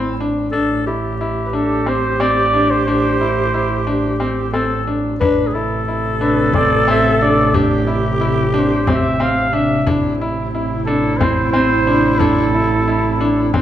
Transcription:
Already playing: double bass A1, grand piano C4, clarinet E4
0.21 grand piano D4
0.51 double bass A1, grand piano D4, clarinet A4
0.87 grand piano E4, clarinet G4
1.21 grand piano E4
1.46 flugelhorn B4
1.53 grand piano D4, flugelhorn A4
1.86 grand piano C4, flugelhorn C5
2.20 grand piano C4, flugelhorn D5
2.54 grand piano D4
2.71 flugelhorn C5
2.86 grand piano D4, flugelhorn C5
3.21 grand piano E4
3.54 grand piano E4
3.87 grand piano D4
4.20 grand piano C4
4.53 grand piano C4, clarinet A4
4.87 grand piano D4
5.21 double bass A1, ambient pad C3 C4 G4, grand piano D4, clarinet B4, frame drum
5.47 clarinet G#4
5.54 grand piano E4, clarinet A4
5.88 grand piano E4
6.21 grand piano D4, flugelhorn B4
6.53 grand piano C4, flugelhorn D5, frame drum
6.88 grand piano C4, flugelhorn E5
7.21 grand piano D4, flugelhorn D5
7.54 grand piano D4, clarinet G4, frame drum
7.87 grand piano E4
8.21 grand piano E4
8.54 grand piano D4
8.58 flugelhorn C5
8.87 grand piano C4, flugelhorn E5, frame drum
9.20 grand piano C4, flugelhorn F5
9.53 grand piano D4, flugelhorn E5
9.86 double bass A1, ambient pad C4, grand piano D4, clarinet E4, frame drum
10.21 grand piano E4
10.55 grand piano E4
10.86 grand piano D4, flugelhorn A4
11.17 grand piano C4, flugelhorn C5, frame drum
11.52 grand piano C4, flugelhorn C5
11.87 grand piano D4
12.19 grand piano D4, flugelhorn A4, frame drum
12.54 grand piano E4
12.88 grand piano E4
13.21 grand piano D4
13.53 grand piano C4, clarinet D4, frame drum

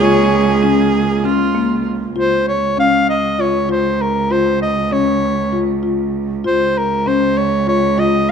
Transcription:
Already playing: cello C#2, string section C#3 A#3 F4, viola G#4
0.01 marimba F4, soprano saxophone C#5
0.63 marimba C#4
1.24 marimba C#4, viola F4
1.55 marimba A#3
2.16 cello C#2, marimba F4, soprano saxophone C5
2.48 soprano saxophone C#5
2.77 marimba C#4, soprano saxophone F5
3.10 soprano saxophone D#5
3.39 marimba F4, soprano saxophone C#5
3.69 marimba F4, soprano saxophone C5
4.02 soprano saxophone A#4
4.31 marimba F4, soprano saxophone C5
4.62 soprano saxophone D#5
4.91 marimba C#4, soprano saxophone C#5
5.53 marimba F4
5.83 marimba F4
6.44 cello C#2, marimba F4, soprano saxophone C5
6.78 soprano saxophone A#4
7.06 marimba C#4, soprano saxophone C5
7.38 soprano saxophone C#5
7.67 marimba F4, soprano saxophone C#5
7.98 marimba F4, soprano saxophone D#5

